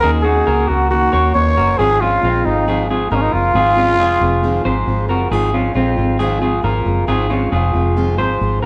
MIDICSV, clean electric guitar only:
0, 0, Header, 1, 2, 480
1, 0, Start_track
1, 0, Tempo, 441176
1, 33, Time_signature, 4, 2, 24, 8
1, 9417, End_track
2, 0, Start_track
2, 0, Title_t, "Clean electric guitar"
2, 0, Program_c, 0, 27
2, 33, Note_on_c, 0, 68, 93
2, 41, Note_on_c, 0, 63, 70
2, 262, Note_off_c, 0, 63, 0
2, 266, Note_on_c, 0, 66, 78
2, 273, Note_off_c, 0, 68, 0
2, 280, Note_on_c, 0, 63, 58
2, 506, Note_off_c, 0, 66, 0
2, 510, Note_on_c, 0, 70, 82
2, 516, Note_off_c, 0, 63, 0
2, 519, Note_on_c, 0, 66, 55
2, 1187, Note_off_c, 0, 70, 0
2, 1192, Note_off_c, 0, 66, 0
2, 1227, Note_on_c, 0, 73, 88
2, 1236, Note_on_c, 0, 70, 64
2, 1680, Note_off_c, 0, 73, 0
2, 1685, Note_off_c, 0, 70, 0
2, 1708, Note_on_c, 0, 70, 69
2, 1715, Note_on_c, 0, 66, 52
2, 1943, Note_off_c, 0, 70, 0
2, 1947, Note_on_c, 0, 68, 90
2, 1952, Note_off_c, 0, 66, 0
2, 1956, Note_on_c, 0, 65, 75
2, 2183, Note_off_c, 0, 65, 0
2, 2189, Note_off_c, 0, 68, 0
2, 2196, Note_on_c, 0, 65, 87
2, 2204, Note_on_c, 0, 61, 60
2, 2428, Note_off_c, 0, 65, 0
2, 2437, Note_off_c, 0, 61, 0
2, 2441, Note_on_c, 0, 65, 81
2, 2449, Note_on_c, 0, 60, 60
2, 2887, Note_off_c, 0, 65, 0
2, 2891, Note_off_c, 0, 60, 0
2, 2915, Note_on_c, 0, 68, 85
2, 2925, Note_on_c, 0, 65, 58
2, 3148, Note_off_c, 0, 68, 0
2, 3155, Note_off_c, 0, 65, 0
2, 3161, Note_on_c, 0, 68, 69
2, 3168, Note_on_c, 0, 65, 56
2, 3387, Note_off_c, 0, 65, 0
2, 3387, Note_off_c, 0, 68, 0
2, 3392, Note_on_c, 0, 70, 74
2, 3400, Note_on_c, 0, 65, 52
2, 3842, Note_off_c, 0, 70, 0
2, 3847, Note_off_c, 0, 65, 0
2, 3868, Note_on_c, 0, 68, 94
2, 3877, Note_on_c, 0, 65, 78
2, 4097, Note_off_c, 0, 65, 0
2, 4109, Note_off_c, 0, 68, 0
2, 4110, Note_on_c, 0, 65, 76
2, 4117, Note_on_c, 0, 61, 61
2, 4342, Note_off_c, 0, 65, 0
2, 4346, Note_on_c, 0, 68, 75
2, 4354, Note_off_c, 0, 61, 0
2, 4355, Note_on_c, 0, 65, 56
2, 5025, Note_off_c, 0, 68, 0
2, 5029, Note_off_c, 0, 65, 0
2, 5061, Note_on_c, 0, 72, 78
2, 5071, Note_on_c, 0, 68, 59
2, 5516, Note_off_c, 0, 72, 0
2, 5522, Note_off_c, 0, 68, 0
2, 5541, Note_on_c, 0, 70, 65
2, 5552, Note_on_c, 0, 66, 52
2, 5781, Note_off_c, 0, 70, 0
2, 5785, Note_off_c, 0, 66, 0
2, 5785, Note_on_c, 0, 68, 97
2, 5790, Note_on_c, 0, 65, 72
2, 6016, Note_off_c, 0, 65, 0
2, 6028, Note_off_c, 0, 68, 0
2, 6029, Note_on_c, 0, 65, 75
2, 6034, Note_on_c, 0, 61, 62
2, 6248, Note_off_c, 0, 65, 0
2, 6261, Note_on_c, 0, 65, 75
2, 6267, Note_off_c, 0, 61, 0
2, 6272, Note_on_c, 0, 60, 61
2, 6716, Note_off_c, 0, 65, 0
2, 6722, Note_off_c, 0, 60, 0
2, 6738, Note_on_c, 0, 68, 82
2, 6746, Note_on_c, 0, 65, 67
2, 6968, Note_off_c, 0, 68, 0
2, 6976, Note_off_c, 0, 65, 0
2, 6981, Note_on_c, 0, 68, 72
2, 6989, Note_on_c, 0, 65, 53
2, 7218, Note_off_c, 0, 65, 0
2, 7220, Note_off_c, 0, 68, 0
2, 7224, Note_on_c, 0, 70, 77
2, 7231, Note_on_c, 0, 65, 61
2, 7678, Note_off_c, 0, 70, 0
2, 7682, Note_off_c, 0, 65, 0
2, 7705, Note_on_c, 0, 68, 90
2, 7712, Note_on_c, 0, 65, 77
2, 7928, Note_off_c, 0, 65, 0
2, 7941, Note_on_c, 0, 65, 76
2, 7948, Note_off_c, 0, 68, 0
2, 7949, Note_on_c, 0, 61, 64
2, 8177, Note_off_c, 0, 65, 0
2, 8182, Note_on_c, 0, 68, 76
2, 8190, Note_off_c, 0, 61, 0
2, 8190, Note_on_c, 0, 65, 59
2, 8863, Note_off_c, 0, 68, 0
2, 8867, Note_off_c, 0, 65, 0
2, 8904, Note_on_c, 0, 72, 88
2, 8912, Note_on_c, 0, 68, 56
2, 9358, Note_off_c, 0, 72, 0
2, 9362, Note_off_c, 0, 68, 0
2, 9384, Note_on_c, 0, 70, 70
2, 9417, Note_off_c, 0, 70, 0
2, 9417, End_track
0, 0, End_of_file